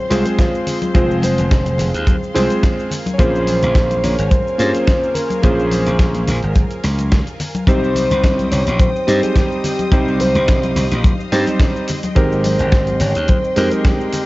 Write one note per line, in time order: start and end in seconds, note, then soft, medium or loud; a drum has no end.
0.00 2.87 G#3 medium
0.00 0.26 C5 loud
0.00 2.87 C5 medium
0.00 7.64 F5 medium
0.00 2.87 C6 medium
0.10 0.23 C2 loud
0.10 0.91 G#3 medium
0.10 0.92 C4 medium
0.10 0.92 F4 medium
0.10 0.92 G#4 medium
0.10 0.92 C5 medium
0.10 open hi-hat loud
0.10 shaker medium
0.26 0.38 G#4 loud
0.26 closed hi-hat medium
0.26 high conga medium
0.26 shaker soft
0.39 0.91 F4 loud
0.39 kick loud
0.39 snare loud
0.39 closed hi-hat medium
0.39 shaker soft
0.55 shaker soft
0.67 open hi-hat loud
0.67 low conga medium
0.67 shaker medium
0.82 closed hi-hat soft
0.82 high conga loud
0.82 shaker soft
0.94 1.33 F1 loud
0.94 2.32 G#3 medium
0.94 2.32 C4 medium
0.94 2.32 F4 medium
0.94 1.25 F4 loud
0.94 2.32 G#4 medium
0.94 2.33 C5 medium
0.94 kick loud
0.94 closed hi-hat medium
0.94 shaker soft
1.11 shaker soft
1.22 1.79 C5 loud
1.22 open hi-hat loud
1.22 high conga medium
1.22 shaker medium
1.38 1.74 F1 medium
1.38 closed hi-hat medium
1.38 low conga medium
1.38 shaker soft
1.51 kick loud
1.51 snare loud
1.51 closed hi-hat medium
1.51 shaker soft
1.66 closed hi-hat soft
1.66 high conga medium
1.66 shaker soft
1.78 1.91 F1 loud
1.78 open hi-hat loud
1.78 low conga loud
1.78 shaker medium
1.94 2.16 D#2 medium
1.94 closed hi-hat medium
1.94 shaker soft
2.07 kick loud
2.07 closed hi-hat medium
2.07 high conga medium
2.07 shaker soft
2.23 shaker soft
2.34 2.47 C2 loud
2.34 2.89 G#3 medium
2.34 2.90 C4 medium
2.34 2.90 F4 medium
2.34 2.90 G#4 medium
2.34 2.90 C5 medium
2.34 snare medium
2.34 open hi-hat loud
2.34 shaker medium
2.50 closed hi-hat medium
2.50 high conga medium
2.50 shaker soft
2.63 kick loud
2.63 snare loud
2.63 closed hi-hat medium
2.63 shaker soft
2.79 shaker soft
2.91 7.64 A#4 medium
2.91 7.64 G#5 medium
2.91 open hi-hat loud
2.91 low conga medium
2.91 shaker medium
3.06 closed hi-hat medium
3.06 high conga loud
3.06 shaker soft
3.14 3.21 C#5 medium
3.18 3.57 A#1 loud
3.18 4.56 A#3 medium
3.18 4.56 C#4 medium
3.18 4.56 F4 medium
3.18 4.57 G#4 medium
3.18 4.05 C5 loud
3.18 4.57 C5 medium
3.18 kick loud
3.18 closed hi-hat medium
3.18 shaker soft
3.35 shaker soft
3.47 open hi-hat loud
3.47 high conga medium
3.47 shaker medium
3.63 3.99 A#1 medium
3.63 closed hi-hat medium
3.63 low conga medium
3.63 shaker soft
3.75 kick loud
3.75 snare loud
3.75 closed hi-hat medium
3.75 shaker soft
3.91 closed hi-hat soft
3.91 high conga medium
3.91 shaker soft
4.03 4.15 A#1 loud
4.03 4.31 C#5 loud
4.03 open hi-hat loud
4.03 low conga medium
4.03 shaker medium
4.19 4.40 G#1 medium
4.19 closed hi-hat medium
4.19 shaker soft
4.30 5.16 C5 loud
4.30 kick loud
4.30 closed hi-hat medium
4.30 high conga medium
4.30 shaker soft
4.47 shaker soft
4.58 4.71 G2 loud
4.58 5.40 A#3 medium
4.58 5.40 C#4 medium
4.58 5.41 F4 medium
4.58 5.41 G#4 medium
4.58 5.41 C5 medium
4.58 open hi-hat loud
4.58 shaker medium
4.75 closed hi-hat medium
4.75 high conga medium
4.75 shaker soft
4.87 kick medium
4.87 snare loud
4.87 closed hi-hat medium
4.87 shaker soft
5.03 shaker soft
5.14 5.44 A#4 loud
5.14 open hi-hat loud
5.14 low conga medium
5.14 shaker medium
5.30 closed hi-hat medium
5.30 high conga medium
5.30 shaker soft
5.42 5.81 A#1 loud
5.42 6.80 A#3 medium
5.42 6.80 C#4 medium
5.42 6.81 F4 medium
5.42 7.11 G#4 loud
5.42 6.81 G#4 medium
5.42 6.81 C5 medium
5.42 kick loud
5.42 closed hi-hat medium
5.42 shaker soft
5.59 shaker soft
5.72 open hi-hat loud
5.72 high conga medium
5.72 shaker medium
5.87 6.23 A#1 medium
5.87 closed hi-hat medium
5.87 low conga medium
5.87 shaker soft
5.99 kick loud
5.99 snare loud
5.99 closed hi-hat medium
5.99 shaker soft
6.14 closed hi-hat soft
6.14 high conga medium
6.14 shaker soft
6.28 6.40 A#1 loud
6.28 open hi-hat loud
6.28 low conga loud
6.28 shaker medium
6.43 6.64 G#1 medium
6.43 closed hi-hat medium
6.43 shaker soft
6.55 kick loud
6.55 closed hi-hat medium
6.55 high conga medium
6.55 shaker soft
6.71 closed hi-hat soft
6.71 shaker soft
6.84 7.22 C#2 medium
6.84 snare medium
6.84 open hi-hat loud
6.84 shaker medium
6.98 closed hi-hat medium
6.98 high conga medium
6.98 shaker soft
7.12 kick medium
7.12 snare loud
7.12 closed hi-hat medium
7.12 shaker soft
7.27 closed hi-hat soft
7.27 shaker soft
7.40 open hi-hat loud
7.40 low conga medium
7.40 shaker medium
7.55 closed hi-hat medium
7.55 high conga loud
7.55 shaker soft
7.67 8.05 C2 loud
7.67 9.05 G3 medium
7.67 9.05 C4 medium
7.67 9.05 D#4 medium
7.67 9.05 G4 medium
7.67 8.48 C5 loud
7.67 11.84 C5 medium
7.67 9.05 C5 medium
7.67 14.26 D#5 medium
7.67 9.90 G5 medium
7.67 11.85 D#6 medium
7.67 kick loud
7.67 closed hi-hat medium
7.67 shaker soft
7.84 shaker soft
7.95 open hi-hat loud
7.95 high conga medium
7.95 shaker medium
8.11 8.47 C2 medium
8.11 closed hi-hat medium
8.11 low conga medium
8.11 shaker soft
8.24 kick loud
8.24 snare loud
8.24 closed hi-hat medium
8.24 shaker soft
8.39 closed hi-hat soft
8.39 high conga medium
8.39 shaker soft
8.51 8.64 C2 loud
8.51 8.81 C#5 loud
8.51 open hi-hat loud
8.51 low conga medium
8.51 shaker medium
8.67 8.89 A#1 medium
8.67 closed hi-hat medium
8.67 shaker soft
8.80 9.24 C5 loud
8.80 kick loud
8.80 closed hi-hat medium
8.80 high conga medium
8.80 shaker soft
8.96 shaker soft
9.07 9.20 G2 loud
9.07 9.89 G3 medium
9.07 9.89 C4 medium
9.07 9.89 D#4 medium
9.07 9.89 G4 medium
9.07 9.90 C5 medium
9.07 open hi-hat loud
9.07 shaker medium
9.23 9.37 G#4 loud
9.23 closed hi-hat medium
9.23 high conga medium
9.23 shaker soft
9.35 9.91 G4 medium
9.35 kick loud
9.35 snare loud
9.35 closed hi-hat medium
9.35 shaker soft
9.52 shaker soft
9.64 open hi-hat loud
9.64 low conga medium
9.64 shaker medium
9.79 closed hi-hat medium
9.79 high conga medium
9.79 shaker soft
9.91 10.30 C2 loud
9.91 11.29 G3 medium
9.91 11.29 C4 medium
9.91 11.29 D#4 medium
9.91 10.22 G4 loud
9.91 11.30 G4 medium
9.91 11.30 C5 medium
9.91 11.87 F5 medium
9.91 kick loud
9.91 closed hi-hat medium
9.91 shaker soft
10.08 shaker soft
10.20 10.76 C5 loud
10.20 open hi-hat loud
10.20 high conga loud
10.20 shaker medium
10.35 10.72 C2 medium
10.35 closed hi-hat medium
10.35 low conga medium
10.35 shaker soft
10.48 kick loud
10.48 snare loud
10.48 closed hi-hat medium
10.48 shaker soft
10.63 closed hi-hat soft
10.63 high conga medium
10.63 shaker soft
10.76 10.88 C2 loud
10.76 open hi-hat loud
10.76 low conga medium
10.76 shaker medium
10.91 11.13 A#1 medium
10.91 closed hi-hat medium
10.91 shaker soft
11.04 kick loud
11.04 closed hi-hat medium
11.04 high conga medium
11.04 shaker soft
11.20 shaker soft
11.32 11.44 G2 loud
11.32 11.87 G3 medium
11.32 11.87 C4 medium
11.32 11.87 D#4 medium
11.32 11.87 G4 medium
11.32 11.87 C5 medium
11.32 snare medium
11.32 open hi-hat loud
11.32 shaker medium
11.47 closed hi-hat medium
11.47 high conga medium
11.47 shaker soft
11.60 kick loud
11.60 snare loud
11.60 closed hi-hat medium
11.60 shaker soft
11.76 shaker soft
11.88 14.26 G#3 medium
11.88 14.26 G5 medium
11.88 14.26 C6 medium
11.88 open hi-hat loud
11.88 low conga medium
11.88 shaker medium
12.03 closed hi-hat medium
12.03 high conga loud
12.03 shaker soft
12.15 12.54 G#1 loud
12.15 13.53 G#3 medium
12.15 13.53 C4 medium
12.15 13.53 D#4 medium
12.15 13.54 G4 medium
12.15 13.54 A#4 medium
12.15 13.01 C5 loud
12.15 kick loud
12.15 closed hi-hat medium
12.15 shaker soft
12.32 shaker soft
12.44 open hi-hat loud
12.44 high conga medium
12.44 shaker medium
12.59 12.96 G#1 medium
12.59 closed hi-hat soft
12.59 low conga medium
12.59 shaker soft
12.72 kick loud
12.72 snare loud
12.72 closed hi-hat medium
12.72 shaker soft
12.87 closed hi-hat soft
12.87 high conga medium
12.87 shaker soft
13.00 13.12 G#1 loud
13.00 13.30 C#5 loud
13.00 open hi-hat loud
13.00 low conga medium
13.00 shaker medium
13.15 13.37 D#2 medium
13.15 closed hi-hat medium
13.15 shaker soft
13.28 13.74 C5 loud
13.28 kick loud
13.28 closed hi-hat medium
13.28 high conga loud
13.28 shaker soft
13.44 shaker soft
13.56 13.69 F2 loud
13.56 14.26 G#3 medium
13.56 14.26 C4 medium
13.56 14.26 D#4 medium
13.56 14.26 G4 medium
13.56 14.26 A#4 medium
13.56 open hi-hat loud
13.56 shaker medium
13.71 13.86 G#4 loud
13.71 closed hi-hat soft
13.71 high conga medium
13.71 shaker soft
13.85 14.26 G4 loud
13.85 kick loud
13.85 snare loud
13.85 closed hi-hat medium
13.85 shaker soft
14.00 shaker soft
14.12 open hi-hat loud
14.12 low conga medium
14.12 shaker medium